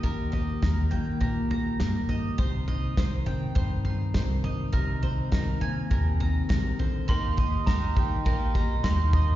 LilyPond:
<<
  \new Staff \with { instrumentName = "Glockenspiel" } { \time 4/4 \key ees \major \tempo 4 = 102 r1 | r1 | r1 | c'''4 bes''2 c'''4 | }
  \new Staff \with { instrumentName = "Mandolin" } { \time 4/4 \key ees \major <bes' ees'' bes''>8 ees''8 bes'8 g''8 bes'8 bes''8 bes'8 ees''8 | c''8 ees''8 c''8 g''8 c''8 c'''8 c''8 ees''8 | bes'8 c''8 bes'8 aes''8 bes'8 bes''8 bes'8 c''8 | bes'8 ees''8 bes'8 g''8 bes'8 bes''8 bes'8 ees''8 | }
  \new Staff \with { instrumentName = "Twelve-string acoustic guitar" } { \time 4/4 \key ees \major r1 | r1 | r1 | <ees bes ees' g'>8 <bes ees' g'>8 <ees bes ees' g'>8 <bes ees' g'>8 <ees bes ees' g'>8 <bes ees' g'>8 <ees bes ees' g'>4 | }
  \new Staff \with { instrumentName = "Steel-string acoustic guitar" } { \time 4/4 \key ees \major << { g'8 g'8 g'8 bes8 g'8 g'4 g'8 | ees'8 ees'8 ees'8 c'8 ees'8 ees'4 ees'8 | ees'8 c'8 ees'8 bes8 c'8 ees'4.~ | ees'1 | } \\ { <ees, ees>4 ees4 bes,4 ees4 | c4 ees4 g,4 ees4 | c4 ees4 c4 c8 d8 | r1 | } >> }
  \new Staff \with { instrumentName = "Upright bass" } { \clef bass \time 4/4 \key ees \major ees,4 ees,8 ees8 bes,,4 g,4 | c,4 c,8 c8 g,4 c,4 | c,4 c,8 c8 ees,4 bes,,4 | ees,4 ees,8 ees8 bes,,4 ees,4 | }
  \new DrumStaff \with { instrumentName = "Drums" } \drummode { \time 4/4 <bd tomfh>8 tomfh8 <bd sn tomfh>8 tomfh8 <bd tomfh>8 tomfh8 <bd sn tomfh>8 tomfh8 | <bd tomfh>8 tomfh8 <bd sn tomfh>8 tomfh8 <bd tomfh>8 tomfh8 <bd sn tomfh>8 tomfh8 | <bd tomfh>8 tomfh8 <bd sn tomfh>8 tomfh8 <bd tomfh>8 tomfh8 <bd sn tomfh>8 tomfh8 | <bd tomfh>8 <bd tomfh>8 <bd sn tomfh>8 <bd tomfh>8 <bd tomfh>8 <bd tomfh>8 <bd sn tomfh>8 <bd tomfh>8 | }
>>